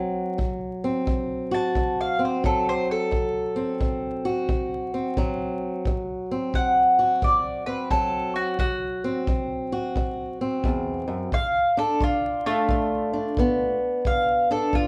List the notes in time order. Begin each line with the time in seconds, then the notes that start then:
Already playing: D2 F#3 C4 F#4
0.38 D2, kick
0.84 C4
1.07 D2, kick
1.51 F#4 A5
1.75 D2, kick
2.01 F5
2.19 C4
2.25 C5
2.44 D2 F#3 A4, kick
2.69 C5
2.91 A4
3.11 D2, kick
3.56 C4
3.81 D2, kick
4.25 F#4
4.49 D2, kick
4.94 C4
5.17 D2 F#3, kick
5.85 D2, kick
6.31 C4
6.54 D2 F#5, kick
6.99 F#4
7.22 D2 D5, kick
7.66 C4 B4
7.91 D2 F#3 A4, kick
8.36 F#4
8.59 D2 F#4, kick
9.04 C4
9.27 D2, kick
9.72 F#4
9.96 D2, kick
10.41 C4
10.64 E2, kick
11.08 F#2
11.32 G2 F5, kick
11.77 D4 A4
12.01 G2 F4, kick
12.46 A3 D4 F4
12.69 G2, kick
13.13 D4
13.37 G2 B3, kick
14.05 G2 F5, kick
14.51 D4 A4
14.73 G2 F4, kick